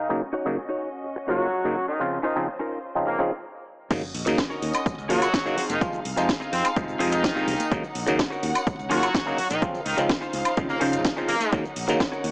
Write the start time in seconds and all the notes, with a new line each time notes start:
Already playing: D#3 D#4
0.09 C#3 F#3 A#3 C#4 D#4 F#4 D#5
0.33 D#4 F#4 C#5
0.45 C#3 F#3 A#3 D#4
0.69 D#4 F#4 C#5
1.04 muted clean electric guitar stroke
1.16 muted clean electric guitar stroke
1.28 C#3 F#3 A#3 D#4 F4 F#4 C#5
1.52 muted clean electric guitar stroke
1.64 C#3 F#3 A#3 D#4
1.88 D#3 D#4
2.00 C#3 F3 C4 F4 C5
2.23 D#3 C#4 D#4 F4 C5
2.36 C#3 F3 C4 D#4
2.59 C#4 D#4 F4 A#4
2.95 C#3 F3 C4 D#4, muted clean electric guitar stroke
3.07 A#3, muted clean electric guitar stroke
3.19 C#3 F3 C4 C#4 D#4 F4 G#4
3.90 D#2 C#3 F#3 A#3 C#4 D#4 F#4 D#5, kick, closed hi-hat, tambourine, crash, sub drop, shaker
4.03 tambourine, low conga, shaker
4.15 A#1, open hi-hat
4.26 D#2 C#3 F#3 A#3 D#4, muted clean electric guitar stroke, closed hi-hat, tambourine, shaker
4.38 kick, snare, closed hi-hat, tambourine, high woodblock, shaker
4.50 C#4 D#4 F#4 A#4, tambourine, shaker
4.62 D#2, open hi-hat
4.73 closed hi-hat, tambourine, high woodblock, shaker
4.86 A#1, kick, closed hi-hat, tambourine, shaker
4.98 C#2, tambourine, shaker
5.09 D#2 C#3 F#3 A#3 C#4 D#4 F4 F#4 C#5, open hi-hat, low conga
5.22 closed hi-hat, tambourine, high woodblock, shaker
5.34 kick, snare, closed hi-hat, shaker
5.45 C#3 F#3 A#3 C#4 D#4 F#4 A#4, tambourine, shaker
5.57 C4 D#4 F4 G#4 F5, open hi-hat, low conga
5.69 F1 D#3 D#4, closed hi-hat, tambourine, high conga, shaker
5.81 C3 F3 G#3 F4, kick, closed hi-hat, tambourine, shaker
5.92 tambourine, low conga, shaker
6.05 C2, open hi-hat
6.16 F2 C3 F3 G#3 D#4, muted clean electric guitar stroke, closed hi-hat, tambourine, shaker
6.28 muted clean electric guitar stroke, kick, snare, closed hi-hat, tambourine, high woodblock, shaker
6.40 C4 D#4 F4 G#4, tambourine, shaker
6.53 F2 C4, open hi-hat
6.65 closed hi-hat, tambourine, high woodblock, shaker
6.76 F1 C3 F3 G#3 D#4, kick, closed hi-hat, tambourine, shaker
6.88 tambourine, shaker
6.99 F2 C3 F3 G#3 C4 D#4 F4 G#4, open hi-hat, low conga
7.12 D#3 D#4, closed hi-hat, tambourine, shaker
7.24 kick, snare, closed hi-hat, tambourine, shaker
7.35 C3 F3 G#3 C4 D#4 F4 G#4, tambourine, shaker
7.47 C2, open hi-hat, low conga
7.59 muted clean electric guitar stroke, closed hi-hat, tambourine, high conga, shaker
7.71 D#2 C#3 F#3 A#3 D#4 C#5 F#5, kick, closed hi-hat, tambourine, shaker
7.83 tambourine, low conga, shaker
7.95 A#1, open hi-hat
8.07 D#2 C#3 F#3 A#3 D#4, muted clean electric guitar stroke, closed hi-hat, tambourine, shaker
8.18 muted clean electric guitar stroke, kick, snare, closed hi-hat, tambourine, high woodblock, shaker
8.30 C#4 D#4 F#4 A#4, tambourine, shaker
8.43 D#2, open hi-hat
8.55 closed hi-hat, tambourine, high woodblock, shaker
8.67 A#1, kick, closed hi-hat, shaker
8.79 C#2, tambourine, shaker
8.90 D#2 C#3 F#3 A#3 C#4 D#4 F4 F#4 A#4, open hi-hat, low conga
9.03 closed hi-hat, tambourine, high woodblock, shaker
9.14 kick, snare, closed hi-hat, tambourine, shaker
9.26 C#3 F#3 A#3 C#4 D#4 F#4 A#4, tambourine, shaker
9.38 open hi-hat, low conga
9.50 A#1 D#3 D#4, muted clean electric guitar stroke, closed hi-hat, tambourine, high conga, shaker
9.62 C#3 F3 C4 D#4 F4 C5 F5, kick, closed hi-hat, tambourine, shaker
9.74 tambourine, low conga, shaker
9.86 C#2 D#3 D#4, open hi-hat
9.97 C#2 C#3 F3 C4 D#4, muted clean electric guitar stroke, closed hi-hat, tambourine, shaker
10.09 kick, snare, closed hi-hat, tambourine, high woodblock, shaker
10.21 C#4 D#4 F4 C5, tambourine, shaker
10.33 C#2, open hi-hat
10.45 closed hi-hat, tambourine, high woodblock, shaker
10.57 C#3 F3 C4 D#4, kick, closed hi-hat, tambourine, shaker
10.69 A#3, tambourine, shaker
10.80 C#3 F3 C#4 D#4 F4 C5, open hi-hat, low conga
10.93 G#1, closed hi-hat, tambourine, shaker
11.05 kick, snare, closed hi-hat, shaker
11.16 C#3 F3 C4 C#4 D#4 F4 C5, tambourine, shaker
11.28 A#3, open hi-hat, low conga
11.40 muted clean electric guitar stroke, closed hi-hat, tambourine, high conga, shaker
11.52 D#2 C#3 F#3 A#3 D#4 C#5 F#5, kick, closed hi-hat, shaker
11.64 tambourine, low conga, shaker
11.76 A#1, open hi-hat
11.88 D#2 C#3 F#3 A#3 D#4, muted clean electric guitar stroke, closed hi-hat, tambourine, shaker
12.00 muted clean electric guitar stroke, kick, snare, closed hi-hat, high woodblock, shaker
12.12 C#4 D#4 F#4 A#4, tambourine, shaker
12.24 D#2, open hi-hat